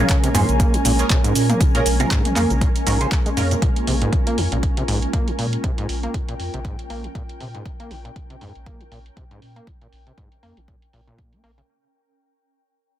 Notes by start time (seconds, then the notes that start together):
Already playing: G#3 A#3 C#4 A#4 G#5
0.00 C#4 F4 G#4 A#4
0.09 kick, clap, closed hi-hat, cabasa
0.24 C3, closed hi-hat, cabasa
0.35 F2 G#2 C#4 F4 G#4 C5, mid tom, open hi-hat, cabasa
0.49 A#1, closed hi-hat, cabasa
0.60 A#3, kick, closed hi-hat, cabasa
0.74 C#3, closed hi-hat, cabasa
0.85 A#1 A#2, open hi-hat, cabasa
0.99 C#4 F4 G#4 A#4, closed hi-hat, cabasa
1.10 C3, kick, clap, closed hi-hat, cabasa
1.24 G#2, closed hi-hat, cabasa
1.35 A#2, open hi-hat, cabasa
1.50 A#3, closed hi-hat, mid tom, cabasa
1.61 C#3, kick, closed hi-hat, cabasa
1.75 A#2 C#4 F4 G#4 A#4, closed hi-hat, cabasa
1.86 A#1, open hi-hat, cabasa
2.00 C3 C#4 F4 G#4 A#4, closed hi-hat, mid tom, cabasa
2.11 G#2, kick, clap, closed hi-hat, cabasa
2.25 closed hi-hat, mid tom, cabasa
2.36 F2 A#3 C#4 F4 G#4 A#4, clap, mid tom, open hi-hat, cabasa
2.50 A#1 C#3, closed hi-hat, cabasa
2.61 A#2, kick, closed hi-hat, cabasa
2.76 closed hi-hat, cabasa
2.87 A#1 G#2 C#4 F4 G#4 A#4, open hi-hat, cabasa
3.01 C#3 C#4 F4 G#4 C5, closed hi-hat, cabasa
3.12 kick, clap, closed hi-hat, cabasa
3.26 G#3, closed hi-hat, cabasa
3.37 F2 G#2 C#4 F4 G#4 A#4, open hi-hat, cabasa
3.51 A#2, closed hi-hat, cabasa
3.62 A#2 F4, kick, closed hi-hat
3.76 closed hi-hat
3.87 A#1 C3, open hi-hat
4.02 G#2, closed hi-hat
4.13 kick, closed hi-hat
4.27 A#3, closed hi-hat
4.38 F2 C#3, open hi-hat
4.52 A#1 A#2, closed hi-hat
4.63 kick, closed hi-hat
4.77 C3, closed hi-hat
4.88 A#1 G#2, open hi-hat
5.02 closed hi-hat
5.13 A#3, kick, closed hi-hat
5.22 G5
5.28 C#3, closed hi-hat
5.39 A#2, open hi-hat
5.53 closed hi-hat
5.64 C3, kick, closed hi-hat
5.78 G#2, closed hi-hat
5.89 A#1, open hi-hat
6.03 A#3, closed hi-hat
6.14 C#3, kick, closed hi-hat
6.29 A#2, closed hi-hat
6.40 F2, open hi-hat
6.54 A#1 C3, closed hi-hat
6.65 G#2, kick, closed hi-hat
6.79 closed hi-hat
6.90 A#1 A#3, open hi-hat
7.04 C#3, closed hi-hat
7.15 A#2, kick, closed hi-hat
7.29 closed hi-hat
7.40 A#2 C3, open hi-hat
7.55 G#2, closed hi-hat
7.66 kick, closed hi-hat
7.80 A#3, closed hi-hat
7.91 A#1 C#3, open hi-hat
8.05 A#2, closed hi-hat
8.16 kick, closed hi-hat
8.30 C3, closed hi-hat
8.41 F2 G#2, open hi-hat
8.55 A#1, closed hi-hat
8.66 A#3, kick, closed hi-hat
8.81 C#3, closed hi-hat
8.92 A#1 A#2, open hi-hat
9.06 closed hi-hat
9.17 C3, kick, closed hi-hat
9.31 G#2, closed hi-hat
9.42 A#2, open hi-hat
9.56 A#3, closed hi-hat
9.67 C#3, kick, closed hi-hat
9.81 A#2, closed hi-hat
9.93 A#1, open hi-hat
10.07 C3, closed hi-hat
10.18 G#2, kick, closed hi-hat
10.32 closed hi-hat
10.43 F2 A#3, open hi-hat
10.57 A#1 C#3, closed hi-hat
10.68 A#2, kick, closed hi-hat
10.82 closed hi-hat
10.93 A#1 A#2, open hi-hat
11.07 A#2, closed hi-hat
11.19 kick, closed hi-hat
11.33 A#3, closed hi-hat
11.44 A#1 A#3, open hi-hat
11.58 C#3, closed hi-hat